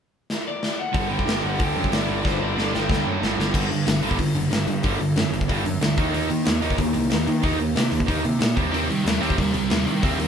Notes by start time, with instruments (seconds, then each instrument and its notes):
0.30 snare
0.48 overdriven electric guitar D5
0.63 snare
0.79 overdriven electric guitar F#5
0.93 picked electric bass G1, distorted electric guitar G2 D3 G3, kick, open hi-hat
1.09 picked electric bass G1, distorted electric guitar G2 D3 G3, overdriven electric guitar G5
1.19 kick
1.24 picked electric bass G1, distorted electric guitar G2 D3 G3, open hi-hat
1.29 snare
1.42 picked electric bass G1, distorted electric guitar G2 D3 G3
1.47 overdriven electric guitar F#5
1.58 picked electric bass D2, distorted electric guitar G2 D3 G3, kick, open hi-hat
1.62 overdriven electric guitar G5
1.74 picked electric bass F#2, distorted electric guitar G2 D3 G3
1.84 kick
1.90 picked electric bass G1, distorted electric guitar G2 D3 G3, snare, open hi-hat
1.94 overdriven electric guitar D5
2.06 picked electric bass G1, distorted electric guitar G2 D3 G3
2.22 picked electric bass G1, distorted electric guitar G2 D3 G3, kick
2.26 overdriven electric guitar C5, snare
2.39 picked electric bass G1, distorted electric guitar G2 D3 G3
2.43 overdriven electric guitar D5
2.55 picked electric bass G1, distorted electric guitar G2 D3 G3, snare
2.71 picked electric bass G1, distorted electric guitar G2 D3 G3, overdriven electric guitar G5, snare
2.87 picked electric bass D2, distorted electric guitar G2 D3 G3, kick
2.91 snare
3.04 picked electric bass F#2, distorted electric guitar G2 D3 G3
3.19 picked electric bass G1, distorted electric guitar G2 D3 G3
3.23 snare
3.36 picked electric bass G1, distorted electric guitar G2 D3 G3
3.40 snare
3.52 picked electric bass G1, distorted electric guitar G2 D3 G3, kick, crash
3.69 distorted electric guitar G2 D3, picked electric bass G2, open hi-hat
3.85 picked electric bass G1, distorted electric guitar G2 D3, snare, open hi-hat
4.02 picked electric bass G1, distorted electric guitar G2 D3 G3, open hi-hat
4.11 kick
4.18 picked electric bass G1, distorted electric guitar G2 D3, kick, open hi-hat
4.35 picked electric bass F#1, distorted electric guitar G2 D3, open hi-hat
4.51 picked electric bass G1, distorted electric guitar G2 D3, snare, open hi-hat
4.67 picked electric bass G2, distorted electric guitar G2 D3, open hi-hat
4.83 picked electric bass G1, distorted electric guitar G2 D3 G3, kick, open hi-hat
4.99 picked electric bass G1, distorted electric guitar G2 D3, open hi-hat
5.16 picked electric bass F#2, distorted electric guitar G2 D3, snare, open hi-hat
5.33 picked electric bass G1, distorted electric guitar G2 D3, open hi-hat
5.41 kick
5.48 picked electric bass G1, distorted electric guitar G2 D3 G3, kick, open hi-hat
5.65 picked electric bass F#2, distorted electric guitar G2 D3, open hi-hat
5.81 picked electric bass D2, distorted electric guitar G2 D3, snare, open hi-hat
5.97 picked electric bass D#2, distorted electric guitar D#3 A#3 D#4, kick, open hi-hat
6.13 picked electric bass D#2, distorted electric guitar D#3 A#3 D#4, open hi-hat
6.30 distorted electric guitar D#3 A#3, picked electric bass D#3, open hi-hat
6.45 picked electric bass D#2, distorted electric guitar D#3 A#3, snare, open hi-hat
6.61 picked electric bass D#2, distorted electric guitar D#3 A#3 D#4, open hi-hat
6.70 kick
6.78 picked electric bass D#2, distorted electric guitar D#3 A#3, kick, open hi-hat
6.94 picked electric bass C2, distorted electric guitar D#3 A#3, open hi-hat
7.10 picked electric bass D#2, distorted electric guitar D#3 A#3, snare, open hi-hat
7.26 distorted electric guitar D#3 A#3, picked electric bass D#3, open hi-hat
7.43 picked electric bass D#2, distorted electric guitar D#3 A#3 D#4, kick, open hi-hat
7.59 picked electric bass D#2, distorted electric guitar D#3 A#3, open hi-hat
7.75 picked electric bass C3, distorted electric guitar D#3 A#3, snare, open hi-hat
7.92 picked electric bass D#2, distorted electric guitar D#3 A#3, open hi-hat
8.00 kick
8.08 picked electric bass D#2, distorted electric guitar D#3 A#3 D#4, kick, open hi-hat
8.24 picked electric bass C3, distorted electric guitar D#3 A#3, open hi-hat
8.39 picked electric bass A#2, distorted electric guitar D#3 A#3, snare, open hi-hat
8.56 picked electric bass D#2, distorted electric guitar C3 G3 C4, kick, open hi-hat
8.71 picked electric bass D#2, distorted electric guitar C3 G3 C4, open hi-hat
8.88 distorted electric guitar C3 G3 C4, picked electric bass D#3, open hi-hat
9.05 picked electric bass D#2, distorted electric guitar C3 G3 C4, snare, open hi-hat
9.20 picked electric bass D#2, distorted electric guitar C3 G3 C4, open hi-hat
9.30 kick
9.37 picked electric bass D#2, distorted electric guitar C3 G3 C4, kick, open hi-hat
9.53 picked electric bass C2, distorted electric guitar C3 G3 C4, open hi-hat
9.70 picked electric bass D#2, distorted electric guitar C3 G3 C4, snare, open hi-hat
9.85 distorted electric guitar C3 G3 C4, picked electric bass D#3, open hi-hat
10.01 picked electric bass D#2, distorted electric guitar C3 G3 C4, kick, open hi-hat
10.18 picked electric bass D#2, distorted electric guitar C3 G3 C4, open hi-hat